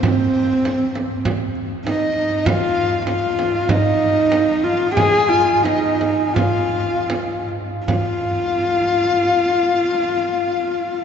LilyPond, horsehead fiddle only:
\new Staff \with { instrumentName = "Horsehead fiddle" } { \time 4/4 \tempo 4 = 91 c'2 r4 ees'8 ees'8 | f'4 f'4 ees'4. f'8 | aes'8 f'8 ees'4 f'4. r8 | f'1 | }